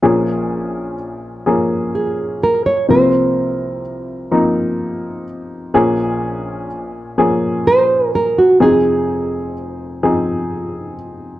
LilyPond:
<<
  \new Staff \with { instrumentName = "Nylon-string guitar" } { \time 6/8 \key bes \minor \tempo 4. = 42 r2 aes'8 bes'16 des''16 | c''2~ c''8 r8 | r2 c''8 bes'16 ges'16 | aes'2~ aes'8 r8 | }
  \new Staff \with { instrumentName = "Upright piano" } { \time 6/8 \key bes \minor <f bes des' aes'>4 r8 <f bes des' aes'>4 r8 | <f bes c' bes'>4 r8 <f bes c' ees'>4 r8 | <f bes des' aes'>4 r8 <f bes des' aes'>4 r8 | <f c' ees' aes'>4 r8 <f c' ees' aes'>4 r8 | }
  \new Staff \with { instrumentName = "Upright piano" } { \clef bass \time 6/8 \key bes \minor <bes,, bes,>2. | <c, c>2. | <bes,, bes,>2. | <f,, f,>2. | }
>>